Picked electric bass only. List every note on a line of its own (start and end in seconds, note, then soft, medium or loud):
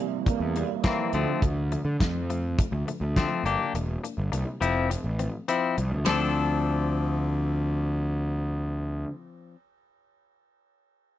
0.40 0.62 E2 medium
1.14 1.24 D2 medium
1.42 1.75 D2 medium
1.85 1.96 D3 medium
2.00 2.55 F2 medium
2.72 2.83 D2 medium
3.01 3.23 D2 medium
3.44 3.55 G1 medium
3.74 3.96 E1 medium
4.18 4.29 G1 medium
4.32 4.43 C2 medium
4.61 4.94 F1 medium
5.04 5.26 A1 medium
5.78 5.91 C2 medium
5.92 6.05 D2 medium
6.07 9.04 D2 medium